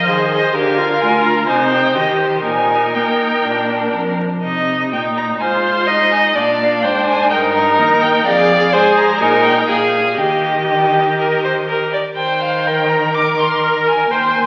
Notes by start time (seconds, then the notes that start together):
0.05 D#3 G#4 C5 D#5
0.30 D#5
0.54 D3 G4 A#4 F5
0.78 F4
1.01 D2 G#5
1.25 A#5
1.48 C3 D#4 C5 G#5
1.72 G5
1.95 D#3 G4 D#5
2.20 C5
2.44 A#2 D#4 A#4 G#5
2.95 A#3 G5
3.44 A#2 D4
3.94 F2
4.43 C3 D#4 D#5
4.92 A#2 D#4 G5
5.17 A#5
5.40 G#2 F4 C5 G#5
5.64 C6
5.87 D#4 D#5
6.11 G#5
6.36 A#2 D4 D5 F5
6.83 G#2 C5 G5
7.06 G#5
7.30 G2 D#4 A#4 G5
7.54 A#5
7.79 D#2
8.02 G5
8.26 F2 G#4 D5 F5
8.73 G#2 G#4 C5 G#5
8.98 A#5
9.20 A#2 D#4 A#4 G#5
9.44 G5
9.68 A#2 G#4 F5
10.18 D#3 G4 D#5
10.69 G4
11.19 A#4
11.44 C5
11.68 A#4
11.94 D5
12.16 D#3 C5 G5
12.41 F5
12.66 A#4 G5
12.90 A#5
13.15 A#4 D6
13.39 C6
13.63 A#4 A#5
13.88 G#5
14.11 D#2 C5 G5
14.35 G#5